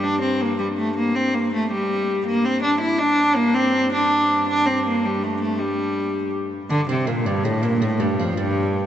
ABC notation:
X:1
M:6/8
L:1/8
Q:3/8=108
K:Gm
V:1 name="Oud"
z6 | z6 | z6 | z6 |
z6 | z6 | D C B, G, A, B, | A, G, F, G,3 |]
V:2 name="Viola da gamba"
D C B, G, A, B, | C B, A, G,3 | B, C D =E D2 | B, C2 D3 |
D C B, G, A, A, | G,4 z2 | D, C, B,, G,, A,, B,, | A,, G,, F,, G,,3 |]
V:3 name="Viola da gamba" clef=bass
G,,6- | G,,6 | G,,6- | G,,6- |
G,,6- | G,,6 | G,,6- | G,,6 |]